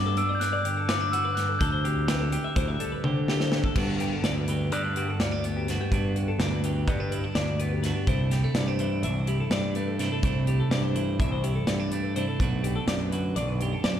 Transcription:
Already playing: fingered electric bass G2, clean electric guitar G2 B3 D4 F#4, glockenspiel D6
0.06 clean electric guitar A4
0.17 clean electric guitar D4 B4, glockenspiel E6, closed hi-hat
0.29 clean electric guitar D5
0.35 glockenspiel G6
0.40 clean electric guitar G2 B4, glockenspiel F#6, snare, closed hi-hat
0.53 clean electric guitar D5
0.65 clean electric guitar D3 G4, closed hi-hat
0.77 clean electric guitar A4
0.89 clean electric guitar B3 B4, glockenspiel D6, snare, closed hi-hat
1.01 clean electric guitar D4
1.12 clean electric guitar F#4, glockenspiel E6, closed hi-hat
1.25 clean electric guitar B4
1.35 clean electric guitar G2, glockenspiel F#6, snare, closed hi-hat
1.49 clean electric guitar A4
1.59 fingered electric bass D2, clean electric guitar D3 A4, glockenspiel G6, kick, closed hi-hat
1.72 clean electric guitar C5
1.84 clean electric guitar C4 G4, closed hi-hat
2.08 clean electric guitar G4 B4, snare, closed hi-hat
2.21 clean electric guitar A4
2.32 clean electric guitar G4 B4, closed hi-hat
2.44 clean electric guitar E5
2.56 fingered electric bass D2, clean electric guitar A2 C5, kick, closed hi-hat
2.68 clean electric guitar E5
2.80 clean electric guitar G3 A4, closed hi-hat
2.92 clean electric guitar B4
3.04 fingered electric bass D3, clean electric guitar G4 C5, high tom
3.28 clean electric guitar G4, snare
3.40 clean electric guitar C5, snare
3.52 clean electric guitar D3, snare
3.64 clean electric guitar A4, kick
3.76 fingered electric bass G2, clean electric guitar G2 B3 D4 F#4 B4, kick, crash
4.00 clean electric guitar B3 G4, closed hi-hat
4.13 clean electric guitar A4
4.24 fingered electric bass D2, clean electric guitar D4 D5, snare, closed hi-hat
4.37 clean electric guitar B4
4.48 clean electric guitar D3 G4 B4, closed hi-hat
4.72 fingered electric bass G2, clean electric guitar D4 D5, closed hi-hat
4.84 clean electric guitar B4
4.96 clean electric guitar G2 F#4 G4, closed hi-hat
5.08 clean electric guitar A4
5.19 fingered electric bass D2, clean electric guitar B3 D5, snare, closed hi-hat
5.32 clean electric guitar D4
5.44 clean electric guitar B3 B4, closed hi-hat
5.57 clean electric guitar G4
5.68 clean electric guitar G2 B3 D4 F#4 B4, snare, closed hi-hat
5.81 clean electric guitar G4
5.92 fingered electric bass G2, clean electric guitar G2 B3 D4 F#4 B4, kick, closed hi-hat
6.16 clean electric guitar B3 G4, closed hi-hat
6.28 clean electric guitar A4
6.39 fingered electric bass D2, clean electric guitar D4 D5, snare, closed hi-hat
6.52 clean electric guitar B4
6.63 clean electric guitar D3 G4 B4, closed hi-hat
6.88 fingered electric bass G2, clean electric guitar B3 D5, kick, closed hi-hat
7.00 clean electric guitar D4 B4
7.11 clean electric guitar G2 E4 G4, closed hi-hat
7.24 clean electric guitar F#4 A4
7.35 fingered electric bass D2, clean electric guitar D4 D5, snare, closed hi-hat
7.59 clean electric guitar B3 B4, closed hi-hat
7.72 clean electric guitar G4
7.83 clean electric guitar G2 B3 D4 F#4 B4, snare, closed hi-hat
7.95 clean electric guitar G4
8.07 fingered electric bass C2, clean electric guitar C3 A3 D4 E4 C5, kick, closed hi-hat
8.31 clean electric guitar G3 G4, snare, closed hi-hat
8.43 clean electric guitar A3 A4
8.55 fingered electric bass G2, clean electric guitar B3 D5, snare, closed hi-hat
8.68 clean electric guitar D4 C5
8.79 clean electric guitar E3 E4 C5, closed hi-hat
9.03 fingered electric bass C2, clean electric guitar D4 E5, closed hi-hat
9.16 clean electric guitar C5
9.27 clean electric guitar G2 E4 G4, closed hi-hat
9.40 clean electric guitar A4
9.50 fingered electric bass G2, clean electric guitar D4 D5, snare, closed hi-hat
9.75 clean electric guitar A3 B4, closed hi-hat
9.88 clean electric guitar A4
9.99 clean electric guitar C3 A3 D4 E4 C5, snare, closed hi-hat
10.12 clean electric guitar A4
10.23 fingered electric bass C2, clean electric guitar C3 A3 D4 E4 C5, kick, closed hi-hat
10.47 clean electric guitar A3 G4, closed hi-hat
10.60 clean electric guitar A4
10.71 fingered electric bass G2, clean electric guitar D4 D5, snare, closed hi-hat
10.84 clean electric guitar C5
10.95 clean electric guitar E3 E4 C5, closed hi-hat
11.20 fingered electric bass C2, clean electric guitar D4 E5, kick, closed hi-hat
11.32 clean electric guitar C5
11.43 clean electric guitar G2 E4 G4, closed hi-hat
11.55 clean electric guitar A4
11.67 fingered electric bass G2, clean electric guitar B3 D5, snare, closed hi-hat
11.79 clean electric guitar D4
11.91 clean electric guitar A3 B4, closed hi-hat
12.04 clean electric guitar A4
12.16 clean electric guitar C3 A3 D4 E4 C5, closed hi-hat
12.28 clean electric guitar A4
12.39 fingered electric bass B1, clean electric guitar B2 A3 D4 F#4 B4, kick, closed hi-hat
12.64 clean electric guitar A3 G4, closed hi-hat
12.76 clean electric guitar A4
12.87 fingered electric bass F#2, clean electric guitar D4 D5, snare, closed hi-hat
13.00 clean electric guitar B4
13.12 clean electric guitar D3 F#4 B4, closed hi-hat
13.36 fingered electric bass B1, clean electric guitar D4 D5, closed hi-hat
13.48 clean electric guitar B4
13.60 clean electric guitar F#2 G4, closed hi-hat
13.72 clean electric guitar A4
13.84 fingered electric bass F#2, clean electric guitar D4 D5, snare, closed hi-hat

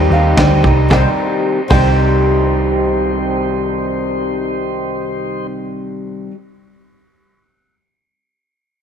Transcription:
Already playing: clean electric guitar C3 D#3, twelve-string acoustic guitar G3 C4 D#4 G4, tonewheel organ C4 D#4 G4 C5, mandolin C5, upright piano G5
0.10 picked electric bass D#2, clean electric guitar G3, twelve-string acoustic guitar C4 D#4 G4, upright piano F5
0.36 picked electric bass D2, twelve-string acoustic guitar C3 G3 C4 D#4 G4, clean electric guitar D#3, upright piano D#5 G5, kick, snare, ride bell
0.63 picked electric bass C2, twelve-string acoustic guitar C4 D#4 G4, kick
0.68 clean electric guitar G3
0.88 picked electric bass C2, twelve-string acoustic guitar C3 G3, clean electric guitar D#3, tonewheel organ C4 D#4 G4 C5, mandolin C5, upright piano D#5 G5, kick, snare
0.93 twelve-string acoustic guitar C4 D#4 G4
1.68 picked electric bass C2, twelve-string acoustic guitar C3 G3, clean electric guitar D#3, mandolin C5, upright piano D#5 G5, kick, crash
1.72 twelve-string acoustic guitar C4 D#4 G4

